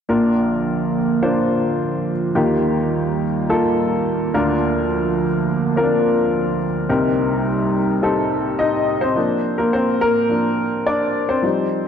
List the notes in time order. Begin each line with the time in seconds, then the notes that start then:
0.09 A#1 A#2 D3 F3 A#3 D4 F4 A#4
1.22 A#3 D4 F4 C5
2.35 D#2 D#3 G3 A#3 D#4 F4 G4
3.49 A#3 D#4 F4 A4
4.34 D2 D3 F3 A#3 D4 F4 A#4
5.76 A#3 C4 F4 A#4
5.83 D4
6.89 C2 C3 G3 C4 D#4 G4 A#4
8.03 C4 D#4 G4 A4
8.59 D#4 D#5
9.01 C4 C5
9.15 F3 A#3 D4
9.58 A#3 A#4
9.73 C4 C5
10.01 A#3 A#4
10.29 F3 A#3 D4
10.86 D4 D5
11.29 C4 C5
11.42 F3 G3 D#4